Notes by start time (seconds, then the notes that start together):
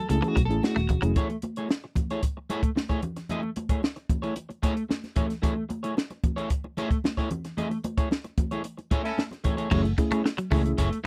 0.09 C#2 A3 C#4 E4 G#4 A4, muted clean electric guitar stroke, closed hi-hat, muted conga, high conga
0.22 E3 A3 C#4 E4 G#4, closed hi-hat
0.28 F#4
0.36 B1 F#3, kick, closed hi-hat, high conga
0.45 A1 A3 A4
0.49 C#4 E4 G#4, closed hi-hat
0.63 F#4, snare, muted conga, high conga
0.76 D#1 A3, snare, closed hi-hat
0.89 E1, muted clean electric guitar stroke, kick, closed hi-hat, low conga
1.02 F1 F#3 A3 C#4 E4 G#4, closed hi-hat
1.16 A3 E4 G#4 C#5, kick, closed hi-hat, muted conga, low conga
1.30 muted clean electric guitar stroke, closed hi-hat, muted conga
1.42 muted clean electric guitar stroke, closed hi-hat, high conga
1.56 A3 E4 G#4 C#5, closed hi-hat
1.69 muted clean electric guitar stroke, snare, muted conga
1.84 muted clean electric guitar stroke
1.95 kick, closed hi-hat, high conga, low conga
2.10 A3 E4 G#4 C#5, closed hi-hat
2.23 muted clean electric guitar stroke, kick, closed hi-hat
2.37 muted clean electric guitar stroke
2.50 A3 E4 G#4 C#5, closed hi-hat, high conga
2.63 muted clean electric guitar stroke, kick, closed hi-hat
2.76 muted clean electric guitar stroke, snare, high conga
2.89 A3 E4 G#4 C#5, kick, closed hi-hat, muted conga
3.02 muted clean electric guitar stroke, closed hi-hat, low conga
3.16 muted clean electric guitar stroke, snare, closed hi-hat
3.29 A3 E4 G#4 D#5, closed hi-hat, muted conga, low conga
3.43 muted clean electric guitar stroke, muted conga
3.56 muted clean electric guitar stroke, closed hi-hat, high conga
3.69 A3 E4 G#4 C#5, kick, closed hi-hat
3.83 muted clean electric guitar stroke, snare, muted conga
3.96 muted clean electric guitar stroke, closed hi-hat
4.09 kick, closed hi-hat, high conga, low conga
4.22 A3 E4 G#4 C#5, closed hi-hat
4.36 muted clean electric guitar stroke, closed hi-hat, muted conga
4.49 muted clean electric guitar stroke, closed hi-hat, muted conga
4.62 A3 E4 G#4 C#5, kick, closed hi-hat, high conga
4.76 muted clean electric guitar stroke, closed hi-hat
4.89 muted clean electric guitar stroke, snare, high conga
5.04 snare, closed hi-hat, muted conga
5.16 A3 E4 G#4 C#5, kick, closed hi-hat, low conga
5.29 muted clean electric guitar stroke, snare, closed hi-hat
5.42 A3 E4 G#4 C#5, kick, closed hi-hat, muted conga, low conga
5.55 muted clean electric guitar stroke
5.69 muted clean electric guitar stroke, closed hi-hat, high conga
5.83 A3 E4 G#4 C#5, closed hi-hat
5.97 muted clean electric guitar stroke, snare, muted conga
6.10 muted clean electric guitar stroke, closed hi-hat, muted conga
6.24 kick, closed hi-hat, high conga, low conga
6.36 A3 E4 G#4 C#5, closed hi-hat
6.50 kick, closed hi-hat
6.64 muted clean electric guitar stroke, muted conga
6.77 A3 E4 G#4 C#5, closed hi-hat, high conga
6.91 muted clean electric guitar stroke, kick, closed hi-hat
7.04 muted clean electric guitar stroke, snare, high conga
7.17 A3 E4 G#4 C#5, kick, snare, closed hi-hat
7.30 muted clean electric guitar stroke, closed hi-hat, low conga
7.45 muted clean electric guitar stroke, snare, closed hi-hat
7.57 A3 E4 G#4 D#5, closed hi-hat, muted conga, low conga
7.71 muted clean electric guitar stroke, closed hi-hat, muted conga
7.84 muted clean electric guitar stroke, closed hi-hat, high conga
7.97 A3 E4 G#4 C#5, kick, closed hi-hat
8.11 muted clean electric guitar stroke, snare, muted conga
8.24 muted clean electric guitar stroke, closed hi-hat, muted conga
8.38 kick, closed hi-hat, high conga, low conga
8.51 A3 E4 G#4 C#5, closed hi-hat
8.64 muted clean electric guitar stroke, closed hi-hat
8.77 muted clean electric guitar stroke, closed hi-hat, muted conga
8.91 A3 E4 G#4 C#5, kick, closed hi-hat, high conga
9.04 C#4 E4 A4, muted clean electric guitar stroke, closed hi-hat
9.18 muted clean electric guitar stroke, snare, high conga
9.31 muted clean electric guitar stroke, snare, closed hi-hat, muted conga
9.44 A3 E4 G#4 C#5, kick, closed hi-hat, low conga
9.57 A3 E4 G#4 C#5, closed hi-hat
9.71 F#1 F#3 A3 C#4 E4 G#4 C#5, kick, crash, low conga
9.84 muted clean electric guitar stroke, closed hi-hat
9.98 A3 C#4 E4 G#4, muted clean electric guitar stroke, kick, closed hi-hat, high conga
10.11 A3 E4 G#4 C#5, muted fingered electric bass stroke, closed hi-hat
10.24 muted clean electric guitar stroke, snare
10.37 F#3, muted clean electric guitar stroke, closed hi-hat, muted conga
10.51 C#2 A3 C#4 E4 G#4 C#5, kick, open hi-hat, high conga, low conga
10.64 muted clean electric guitar stroke, closed hi-hat
10.77 F#1 A3 E4 G#4 C#5, kick, closed hi-hat
10.91 muted clean electric guitar stroke, closed hi-hat, muted conga